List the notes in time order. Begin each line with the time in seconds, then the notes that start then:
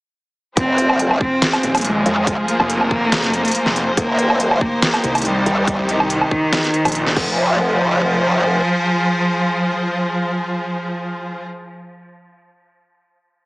0.57 F1 F3 C4 F4 G#4 C5, kick, closed hi-hat
0.78 closed hi-hat
0.90 low woodblock
0.99 closed hi-hat
1.11 low woodblock
1.21 C4, kick
1.42 snare, closed hi-hat
1.53 closed hi-hat, low woodblock
1.63 D#1, closed hi-hat
1.75 closed hi-hat, low woodblock
1.77 closed hi-hat
1.81 closed hi-hat
1.85 G#3, closed hi-hat
2.06 F2, closed hi-hat
2.27 kick, closed hi-hat
2.48 A#3, closed hi-hat
2.60 F1, low woodblock
2.70 closed hi-hat
2.81 low woodblock
2.91 kick
3.12 snare, closed hi-hat
3.24 closed hi-hat
3.33 closed hi-hat
3.45 closed hi-hat
3.48 closed hi-hat
3.51 closed hi-hat
3.55 closed hi-hat
3.66 F1, snare
3.76 closed hi-hat
3.97 D#1 D#3 A#3 D#4 G4, kick, closed hi-hat
4.19 closed hi-hat
4.30 low woodblock
4.40 closed hi-hat
4.51 low woodblock
4.61 A#3, kick
4.82 snare, closed hi-hat
4.94 closed hi-hat, low woodblock
5.04 C2, closed hi-hat
5.15 closed hi-hat, low woodblock
5.18 closed hi-hat
5.22 closed hi-hat
5.25 G3, closed hi-hat
5.46 D#2, closed hi-hat
5.68 kick, closed hi-hat
5.79 C2
5.89 D#3, closed hi-hat
6.00 C2, low woodblock
6.10 closed hi-hat
6.21 low woodblock
6.31 kick
6.53 snare, closed hi-hat
6.64 closed hi-hat
6.74 closed hi-hat
6.85 A#1, closed hi-hat, low woodblock
6.88 closed hi-hat
6.92 closed hi-hat
6.95 closed hi-hat
7.07 snare
7.16 F1 F3 F4 G#4 C5, kick, crash